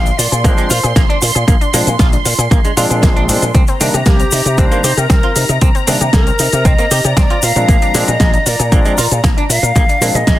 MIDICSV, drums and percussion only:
0, 0, Header, 1, 2, 480
1, 0, Start_track
1, 0, Tempo, 517241
1, 1374, Time_signature, 4, 2, 24, 8
1, 9642, End_track
2, 0, Start_track
2, 0, Title_t, "Drums"
2, 56, Note_on_c, 9, 82, 38
2, 63, Note_on_c, 9, 42, 37
2, 149, Note_off_c, 9, 82, 0
2, 155, Note_off_c, 9, 42, 0
2, 176, Note_on_c, 9, 46, 114
2, 178, Note_on_c, 9, 82, 91
2, 180, Note_off_c, 9, 82, 0
2, 180, Note_on_c, 9, 82, 76
2, 269, Note_off_c, 9, 46, 0
2, 272, Note_off_c, 9, 82, 0
2, 285, Note_on_c, 9, 82, 39
2, 301, Note_on_c, 9, 42, 40
2, 304, Note_off_c, 9, 82, 0
2, 304, Note_on_c, 9, 82, 45
2, 393, Note_off_c, 9, 42, 0
2, 397, Note_off_c, 9, 82, 0
2, 412, Note_on_c, 9, 36, 127
2, 415, Note_on_c, 9, 42, 89
2, 418, Note_on_c, 9, 82, 31
2, 504, Note_off_c, 9, 36, 0
2, 507, Note_off_c, 9, 42, 0
2, 511, Note_off_c, 9, 82, 0
2, 535, Note_on_c, 9, 82, 39
2, 541, Note_on_c, 9, 42, 38
2, 628, Note_off_c, 9, 82, 0
2, 634, Note_off_c, 9, 42, 0
2, 648, Note_on_c, 9, 82, 96
2, 656, Note_on_c, 9, 46, 107
2, 659, Note_off_c, 9, 82, 0
2, 659, Note_on_c, 9, 82, 75
2, 749, Note_off_c, 9, 46, 0
2, 752, Note_off_c, 9, 82, 0
2, 774, Note_on_c, 9, 82, 42
2, 779, Note_on_c, 9, 42, 39
2, 783, Note_off_c, 9, 82, 0
2, 783, Note_on_c, 9, 82, 45
2, 872, Note_off_c, 9, 42, 0
2, 876, Note_off_c, 9, 82, 0
2, 889, Note_on_c, 9, 82, 51
2, 891, Note_on_c, 9, 36, 127
2, 891, Note_on_c, 9, 38, 125
2, 895, Note_on_c, 9, 42, 93
2, 899, Note_off_c, 9, 82, 0
2, 899, Note_on_c, 9, 82, 32
2, 984, Note_off_c, 9, 36, 0
2, 984, Note_off_c, 9, 38, 0
2, 988, Note_off_c, 9, 42, 0
2, 992, Note_off_c, 9, 82, 0
2, 1021, Note_on_c, 9, 42, 41
2, 1114, Note_off_c, 9, 42, 0
2, 1126, Note_on_c, 9, 82, 97
2, 1136, Note_on_c, 9, 46, 113
2, 1139, Note_off_c, 9, 82, 0
2, 1139, Note_on_c, 9, 82, 75
2, 1229, Note_off_c, 9, 46, 0
2, 1232, Note_off_c, 9, 82, 0
2, 1254, Note_on_c, 9, 82, 42
2, 1261, Note_on_c, 9, 42, 40
2, 1265, Note_off_c, 9, 82, 0
2, 1265, Note_on_c, 9, 82, 43
2, 1354, Note_off_c, 9, 42, 0
2, 1358, Note_off_c, 9, 82, 0
2, 1371, Note_on_c, 9, 36, 125
2, 1373, Note_on_c, 9, 82, 52
2, 1375, Note_on_c, 9, 42, 90
2, 1378, Note_off_c, 9, 82, 0
2, 1378, Note_on_c, 9, 82, 34
2, 1464, Note_off_c, 9, 36, 0
2, 1468, Note_off_c, 9, 42, 0
2, 1471, Note_off_c, 9, 82, 0
2, 1497, Note_on_c, 9, 42, 37
2, 1499, Note_on_c, 9, 82, 34
2, 1590, Note_off_c, 9, 42, 0
2, 1592, Note_off_c, 9, 82, 0
2, 1611, Note_on_c, 9, 46, 120
2, 1615, Note_on_c, 9, 82, 81
2, 1619, Note_off_c, 9, 82, 0
2, 1619, Note_on_c, 9, 82, 99
2, 1704, Note_off_c, 9, 46, 0
2, 1712, Note_off_c, 9, 82, 0
2, 1736, Note_on_c, 9, 42, 39
2, 1739, Note_on_c, 9, 82, 45
2, 1740, Note_off_c, 9, 82, 0
2, 1740, Note_on_c, 9, 82, 44
2, 1828, Note_off_c, 9, 42, 0
2, 1833, Note_off_c, 9, 82, 0
2, 1849, Note_on_c, 9, 38, 114
2, 1851, Note_on_c, 9, 36, 127
2, 1853, Note_on_c, 9, 42, 90
2, 1855, Note_on_c, 9, 82, 57
2, 1856, Note_off_c, 9, 82, 0
2, 1856, Note_on_c, 9, 82, 33
2, 1942, Note_off_c, 9, 38, 0
2, 1944, Note_off_c, 9, 36, 0
2, 1946, Note_off_c, 9, 42, 0
2, 1949, Note_off_c, 9, 82, 0
2, 1974, Note_on_c, 9, 82, 36
2, 1978, Note_on_c, 9, 42, 40
2, 2067, Note_off_c, 9, 82, 0
2, 2071, Note_off_c, 9, 42, 0
2, 2090, Note_on_c, 9, 82, 89
2, 2093, Note_on_c, 9, 46, 104
2, 2096, Note_off_c, 9, 82, 0
2, 2096, Note_on_c, 9, 82, 74
2, 2185, Note_off_c, 9, 46, 0
2, 2189, Note_off_c, 9, 82, 0
2, 2217, Note_on_c, 9, 82, 38
2, 2218, Note_on_c, 9, 42, 38
2, 2221, Note_off_c, 9, 82, 0
2, 2221, Note_on_c, 9, 82, 45
2, 2311, Note_off_c, 9, 42, 0
2, 2314, Note_off_c, 9, 82, 0
2, 2331, Note_on_c, 9, 36, 121
2, 2334, Note_on_c, 9, 42, 90
2, 2337, Note_on_c, 9, 82, 52
2, 2338, Note_off_c, 9, 82, 0
2, 2338, Note_on_c, 9, 82, 33
2, 2424, Note_off_c, 9, 36, 0
2, 2427, Note_off_c, 9, 42, 0
2, 2430, Note_off_c, 9, 82, 0
2, 2456, Note_on_c, 9, 42, 37
2, 2456, Note_on_c, 9, 82, 39
2, 2549, Note_off_c, 9, 42, 0
2, 2549, Note_off_c, 9, 82, 0
2, 2572, Note_on_c, 9, 46, 106
2, 2575, Note_on_c, 9, 82, 76
2, 2577, Note_off_c, 9, 82, 0
2, 2577, Note_on_c, 9, 82, 90
2, 2664, Note_off_c, 9, 46, 0
2, 2669, Note_off_c, 9, 82, 0
2, 2693, Note_on_c, 9, 82, 37
2, 2697, Note_on_c, 9, 42, 40
2, 2700, Note_off_c, 9, 82, 0
2, 2700, Note_on_c, 9, 82, 45
2, 2790, Note_off_c, 9, 42, 0
2, 2793, Note_off_c, 9, 82, 0
2, 2808, Note_on_c, 9, 82, 51
2, 2810, Note_on_c, 9, 36, 125
2, 2810, Note_on_c, 9, 38, 119
2, 2814, Note_on_c, 9, 42, 89
2, 2817, Note_off_c, 9, 82, 0
2, 2817, Note_on_c, 9, 82, 32
2, 2903, Note_off_c, 9, 36, 0
2, 2903, Note_off_c, 9, 38, 0
2, 2907, Note_off_c, 9, 42, 0
2, 2910, Note_off_c, 9, 82, 0
2, 2938, Note_on_c, 9, 42, 38
2, 3031, Note_off_c, 9, 42, 0
2, 3051, Note_on_c, 9, 82, 99
2, 3053, Note_on_c, 9, 46, 106
2, 3057, Note_off_c, 9, 82, 0
2, 3057, Note_on_c, 9, 82, 76
2, 3146, Note_off_c, 9, 46, 0
2, 3150, Note_off_c, 9, 82, 0
2, 3171, Note_on_c, 9, 82, 41
2, 3177, Note_on_c, 9, 42, 38
2, 3181, Note_off_c, 9, 82, 0
2, 3181, Note_on_c, 9, 82, 44
2, 3270, Note_off_c, 9, 42, 0
2, 3273, Note_off_c, 9, 82, 0
2, 3287, Note_on_c, 9, 82, 53
2, 3290, Note_on_c, 9, 36, 124
2, 3292, Note_on_c, 9, 42, 88
2, 3295, Note_off_c, 9, 82, 0
2, 3295, Note_on_c, 9, 82, 35
2, 3383, Note_off_c, 9, 36, 0
2, 3384, Note_off_c, 9, 42, 0
2, 3388, Note_off_c, 9, 82, 0
2, 3410, Note_on_c, 9, 82, 36
2, 3415, Note_on_c, 9, 42, 37
2, 3502, Note_off_c, 9, 82, 0
2, 3508, Note_off_c, 9, 42, 0
2, 3533, Note_on_c, 9, 46, 114
2, 3533, Note_on_c, 9, 82, 101
2, 3536, Note_off_c, 9, 82, 0
2, 3536, Note_on_c, 9, 82, 84
2, 3626, Note_off_c, 9, 46, 0
2, 3629, Note_off_c, 9, 82, 0
2, 3656, Note_on_c, 9, 42, 39
2, 3656, Note_on_c, 9, 82, 37
2, 3660, Note_off_c, 9, 82, 0
2, 3660, Note_on_c, 9, 82, 47
2, 3749, Note_off_c, 9, 42, 0
2, 3753, Note_off_c, 9, 82, 0
2, 3761, Note_on_c, 9, 82, 53
2, 3766, Note_on_c, 9, 38, 117
2, 3770, Note_on_c, 9, 36, 123
2, 3770, Note_on_c, 9, 42, 92
2, 3774, Note_off_c, 9, 82, 0
2, 3774, Note_on_c, 9, 82, 36
2, 3859, Note_off_c, 9, 38, 0
2, 3863, Note_off_c, 9, 36, 0
2, 3863, Note_off_c, 9, 42, 0
2, 3867, Note_off_c, 9, 82, 0
2, 3894, Note_on_c, 9, 42, 39
2, 3898, Note_on_c, 9, 82, 39
2, 3987, Note_off_c, 9, 42, 0
2, 3990, Note_off_c, 9, 82, 0
2, 3999, Note_on_c, 9, 82, 89
2, 4011, Note_on_c, 9, 46, 107
2, 4015, Note_off_c, 9, 82, 0
2, 4015, Note_on_c, 9, 82, 78
2, 4104, Note_off_c, 9, 46, 0
2, 4108, Note_off_c, 9, 82, 0
2, 4137, Note_on_c, 9, 42, 39
2, 4140, Note_on_c, 9, 82, 47
2, 4230, Note_off_c, 9, 42, 0
2, 4233, Note_off_c, 9, 82, 0
2, 4247, Note_on_c, 9, 82, 52
2, 4251, Note_on_c, 9, 36, 118
2, 4253, Note_on_c, 9, 42, 90
2, 4257, Note_off_c, 9, 82, 0
2, 4257, Note_on_c, 9, 82, 33
2, 4344, Note_off_c, 9, 36, 0
2, 4346, Note_off_c, 9, 42, 0
2, 4350, Note_off_c, 9, 82, 0
2, 4377, Note_on_c, 9, 42, 37
2, 4378, Note_on_c, 9, 82, 34
2, 4470, Note_off_c, 9, 42, 0
2, 4471, Note_off_c, 9, 82, 0
2, 4489, Note_on_c, 9, 82, 99
2, 4492, Note_on_c, 9, 46, 106
2, 4495, Note_off_c, 9, 82, 0
2, 4495, Note_on_c, 9, 82, 80
2, 4585, Note_off_c, 9, 46, 0
2, 4588, Note_off_c, 9, 82, 0
2, 4617, Note_on_c, 9, 42, 39
2, 4617, Note_on_c, 9, 82, 38
2, 4621, Note_off_c, 9, 82, 0
2, 4621, Note_on_c, 9, 82, 46
2, 4710, Note_off_c, 9, 42, 0
2, 4713, Note_off_c, 9, 82, 0
2, 4730, Note_on_c, 9, 38, 116
2, 4731, Note_on_c, 9, 36, 121
2, 4734, Note_on_c, 9, 42, 87
2, 4735, Note_on_c, 9, 82, 51
2, 4737, Note_off_c, 9, 82, 0
2, 4737, Note_on_c, 9, 82, 34
2, 4822, Note_off_c, 9, 38, 0
2, 4824, Note_off_c, 9, 36, 0
2, 4826, Note_off_c, 9, 42, 0
2, 4830, Note_off_c, 9, 82, 0
2, 4855, Note_on_c, 9, 42, 39
2, 4948, Note_off_c, 9, 42, 0
2, 4971, Note_on_c, 9, 46, 106
2, 4974, Note_on_c, 9, 82, 78
2, 4976, Note_off_c, 9, 82, 0
2, 4976, Note_on_c, 9, 82, 89
2, 5064, Note_off_c, 9, 46, 0
2, 5069, Note_off_c, 9, 82, 0
2, 5095, Note_on_c, 9, 42, 39
2, 5098, Note_on_c, 9, 82, 46
2, 5103, Note_off_c, 9, 82, 0
2, 5103, Note_on_c, 9, 82, 36
2, 5188, Note_off_c, 9, 42, 0
2, 5196, Note_off_c, 9, 82, 0
2, 5210, Note_on_c, 9, 42, 95
2, 5212, Note_on_c, 9, 36, 122
2, 5214, Note_on_c, 9, 82, 35
2, 5220, Note_off_c, 9, 82, 0
2, 5220, Note_on_c, 9, 82, 54
2, 5303, Note_off_c, 9, 42, 0
2, 5305, Note_off_c, 9, 36, 0
2, 5313, Note_off_c, 9, 82, 0
2, 5335, Note_on_c, 9, 42, 41
2, 5347, Note_on_c, 9, 82, 32
2, 5428, Note_off_c, 9, 42, 0
2, 5440, Note_off_c, 9, 82, 0
2, 5451, Note_on_c, 9, 46, 114
2, 5454, Note_on_c, 9, 82, 86
2, 5544, Note_off_c, 9, 46, 0
2, 5547, Note_off_c, 9, 82, 0
2, 5577, Note_on_c, 9, 42, 40
2, 5580, Note_on_c, 9, 82, 35
2, 5581, Note_off_c, 9, 82, 0
2, 5581, Note_on_c, 9, 82, 48
2, 5670, Note_off_c, 9, 42, 0
2, 5673, Note_off_c, 9, 82, 0
2, 5689, Note_on_c, 9, 38, 114
2, 5692, Note_on_c, 9, 36, 117
2, 5693, Note_on_c, 9, 42, 90
2, 5693, Note_on_c, 9, 82, 51
2, 5696, Note_off_c, 9, 82, 0
2, 5696, Note_on_c, 9, 82, 36
2, 5782, Note_off_c, 9, 38, 0
2, 5785, Note_off_c, 9, 36, 0
2, 5786, Note_off_c, 9, 42, 0
2, 5789, Note_off_c, 9, 82, 0
2, 5817, Note_on_c, 9, 42, 39
2, 5822, Note_on_c, 9, 82, 33
2, 5909, Note_off_c, 9, 42, 0
2, 5915, Note_off_c, 9, 82, 0
2, 5926, Note_on_c, 9, 82, 94
2, 5930, Note_on_c, 9, 46, 102
2, 5934, Note_off_c, 9, 82, 0
2, 5934, Note_on_c, 9, 82, 83
2, 6023, Note_off_c, 9, 46, 0
2, 6027, Note_off_c, 9, 82, 0
2, 6055, Note_on_c, 9, 42, 42
2, 6059, Note_on_c, 9, 82, 51
2, 6069, Note_off_c, 9, 82, 0
2, 6069, Note_on_c, 9, 82, 42
2, 6148, Note_off_c, 9, 42, 0
2, 6161, Note_off_c, 9, 82, 0
2, 6171, Note_on_c, 9, 82, 54
2, 6172, Note_on_c, 9, 36, 112
2, 6172, Note_on_c, 9, 42, 94
2, 6176, Note_off_c, 9, 82, 0
2, 6176, Note_on_c, 9, 82, 34
2, 6264, Note_off_c, 9, 36, 0
2, 6265, Note_off_c, 9, 42, 0
2, 6268, Note_off_c, 9, 82, 0
2, 6297, Note_on_c, 9, 42, 39
2, 6301, Note_on_c, 9, 82, 38
2, 6389, Note_off_c, 9, 42, 0
2, 6394, Note_off_c, 9, 82, 0
2, 6412, Note_on_c, 9, 82, 96
2, 6413, Note_on_c, 9, 46, 101
2, 6416, Note_off_c, 9, 82, 0
2, 6416, Note_on_c, 9, 82, 81
2, 6505, Note_off_c, 9, 46, 0
2, 6509, Note_off_c, 9, 82, 0
2, 6534, Note_on_c, 9, 82, 36
2, 6538, Note_on_c, 9, 42, 41
2, 6542, Note_off_c, 9, 82, 0
2, 6542, Note_on_c, 9, 82, 48
2, 6631, Note_off_c, 9, 42, 0
2, 6635, Note_off_c, 9, 82, 0
2, 6651, Note_on_c, 9, 38, 114
2, 6652, Note_on_c, 9, 36, 118
2, 6653, Note_on_c, 9, 82, 53
2, 6655, Note_on_c, 9, 42, 97
2, 6658, Note_off_c, 9, 82, 0
2, 6658, Note_on_c, 9, 82, 37
2, 6744, Note_off_c, 9, 38, 0
2, 6745, Note_off_c, 9, 36, 0
2, 6748, Note_off_c, 9, 42, 0
2, 6751, Note_off_c, 9, 82, 0
2, 6778, Note_on_c, 9, 42, 41
2, 6871, Note_off_c, 9, 42, 0
2, 6885, Note_on_c, 9, 82, 83
2, 6893, Note_on_c, 9, 46, 101
2, 6897, Note_off_c, 9, 82, 0
2, 6897, Note_on_c, 9, 82, 85
2, 6986, Note_off_c, 9, 46, 0
2, 6989, Note_off_c, 9, 82, 0
2, 7017, Note_on_c, 9, 42, 39
2, 7020, Note_on_c, 9, 82, 45
2, 7023, Note_off_c, 9, 82, 0
2, 7023, Note_on_c, 9, 82, 36
2, 7110, Note_off_c, 9, 42, 0
2, 7116, Note_off_c, 9, 82, 0
2, 7131, Note_on_c, 9, 36, 118
2, 7132, Note_on_c, 9, 42, 95
2, 7136, Note_on_c, 9, 82, 36
2, 7144, Note_off_c, 9, 82, 0
2, 7144, Note_on_c, 9, 82, 54
2, 7224, Note_off_c, 9, 36, 0
2, 7225, Note_off_c, 9, 42, 0
2, 7237, Note_off_c, 9, 82, 0
2, 7256, Note_on_c, 9, 82, 33
2, 7258, Note_on_c, 9, 42, 42
2, 7349, Note_off_c, 9, 82, 0
2, 7351, Note_off_c, 9, 42, 0
2, 7372, Note_on_c, 9, 46, 109
2, 7373, Note_on_c, 9, 82, 94
2, 7376, Note_off_c, 9, 82, 0
2, 7376, Note_on_c, 9, 82, 86
2, 7465, Note_off_c, 9, 46, 0
2, 7468, Note_off_c, 9, 82, 0
2, 7498, Note_on_c, 9, 42, 41
2, 7501, Note_on_c, 9, 82, 49
2, 7503, Note_off_c, 9, 82, 0
2, 7503, Note_on_c, 9, 82, 43
2, 7590, Note_off_c, 9, 42, 0
2, 7596, Note_off_c, 9, 82, 0
2, 7609, Note_on_c, 9, 38, 119
2, 7612, Note_on_c, 9, 36, 116
2, 7613, Note_on_c, 9, 42, 97
2, 7616, Note_on_c, 9, 82, 36
2, 7617, Note_off_c, 9, 82, 0
2, 7617, Note_on_c, 9, 82, 49
2, 7702, Note_off_c, 9, 38, 0
2, 7705, Note_off_c, 9, 36, 0
2, 7706, Note_off_c, 9, 42, 0
2, 7710, Note_off_c, 9, 82, 0
2, 7736, Note_on_c, 9, 42, 42
2, 7741, Note_on_c, 9, 82, 33
2, 7829, Note_off_c, 9, 42, 0
2, 7834, Note_off_c, 9, 82, 0
2, 7852, Note_on_c, 9, 46, 99
2, 7854, Note_on_c, 9, 82, 93
2, 7856, Note_off_c, 9, 82, 0
2, 7856, Note_on_c, 9, 82, 84
2, 7945, Note_off_c, 9, 46, 0
2, 7948, Note_off_c, 9, 82, 0
2, 7977, Note_on_c, 9, 42, 45
2, 7978, Note_on_c, 9, 82, 42
2, 7981, Note_off_c, 9, 82, 0
2, 7981, Note_on_c, 9, 82, 52
2, 8070, Note_off_c, 9, 42, 0
2, 8073, Note_off_c, 9, 82, 0
2, 8092, Note_on_c, 9, 36, 114
2, 8094, Note_on_c, 9, 42, 93
2, 8094, Note_on_c, 9, 82, 50
2, 8097, Note_off_c, 9, 82, 0
2, 8097, Note_on_c, 9, 82, 36
2, 8185, Note_off_c, 9, 36, 0
2, 8186, Note_off_c, 9, 42, 0
2, 8190, Note_off_c, 9, 82, 0
2, 8214, Note_on_c, 9, 82, 35
2, 8217, Note_on_c, 9, 42, 41
2, 8307, Note_off_c, 9, 82, 0
2, 8310, Note_off_c, 9, 42, 0
2, 8328, Note_on_c, 9, 82, 91
2, 8336, Note_on_c, 9, 46, 107
2, 8340, Note_off_c, 9, 82, 0
2, 8340, Note_on_c, 9, 82, 83
2, 8429, Note_off_c, 9, 46, 0
2, 8433, Note_off_c, 9, 82, 0
2, 8458, Note_on_c, 9, 42, 41
2, 8458, Note_on_c, 9, 82, 38
2, 8462, Note_off_c, 9, 82, 0
2, 8462, Note_on_c, 9, 82, 47
2, 8551, Note_off_c, 9, 42, 0
2, 8555, Note_off_c, 9, 82, 0
2, 8572, Note_on_c, 9, 38, 124
2, 8573, Note_on_c, 9, 36, 119
2, 8576, Note_on_c, 9, 42, 94
2, 8578, Note_on_c, 9, 82, 48
2, 8579, Note_off_c, 9, 82, 0
2, 8579, Note_on_c, 9, 82, 37
2, 8665, Note_off_c, 9, 38, 0
2, 8666, Note_off_c, 9, 36, 0
2, 8669, Note_off_c, 9, 42, 0
2, 8672, Note_off_c, 9, 82, 0
2, 8702, Note_on_c, 9, 42, 41
2, 8795, Note_off_c, 9, 42, 0
2, 8816, Note_on_c, 9, 46, 104
2, 8816, Note_on_c, 9, 82, 95
2, 8820, Note_off_c, 9, 82, 0
2, 8820, Note_on_c, 9, 82, 87
2, 8909, Note_off_c, 9, 46, 0
2, 8913, Note_off_c, 9, 82, 0
2, 8941, Note_on_c, 9, 42, 41
2, 8941, Note_on_c, 9, 82, 41
2, 8945, Note_off_c, 9, 82, 0
2, 8945, Note_on_c, 9, 82, 48
2, 9034, Note_off_c, 9, 42, 0
2, 9038, Note_off_c, 9, 82, 0
2, 9051, Note_on_c, 9, 82, 52
2, 9054, Note_on_c, 9, 36, 121
2, 9059, Note_on_c, 9, 42, 99
2, 9063, Note_off_c, 9, 82, 0
2, 9063, Note_on_c, 9, 82, 36
2, 9147, Note_off_c, 9, 36, 0
2, 9152, Note_off_c, 9, 42, 0
2, 9156, Note_off_c, 9, 82, 0
2, 9179, Note_on_c, 9, 82, 37
2, 9181, Note_on_c, 9, 42, 41
2, 9272, Note_off_c, 9, 82, 0
2, 9274, Note_off_c, 9, 42, 0
2, 9295, Note_on_c, 9, 82, 96
2, 9296, Note_on_c, 9, 46, 107
2, 9300, Note_off_c, 9, 82, 0
2, 9300, Note_on_c, 9, 82, 88
2, 9389, Note_off_c, 9, 46, 0
2, 9393, Note_off_c, 9, 82, 0
2, 9421, Note_on_c, 9, 42, 42
2, 9422, Note_on_c, 9, 82, 43
2, 9425, Note_off_c, 9, 82, 0
2, 9425, Note_on_c, 9, 82, 47
2, 9514, Note_off_c, 9, 42, 0
2, 9518, Note_off_c, 9, 82, 0
2, 9532, Note_on_c, 9, 38, 124
2, 9534, Note_on_c, 9, 82, 61
2, 9535, Note_on_c, 9, 36, 118
2, 9536, Note_on_c, 9, 42, 96
2, 9539, Note_off_c, 9, 82, 0
2, 9539, Note_on_c, 9, 82, 37
2, 9625, Note_off_c, 9, 38, 0
2, 9628, Note_off_c, 9, 36, 0
2, 9629, Note_off_c, 9, 42, 0
2, 9632, Note_off_c, 9, 82, 0
2, 9642, End_track
0, 0, End_of_file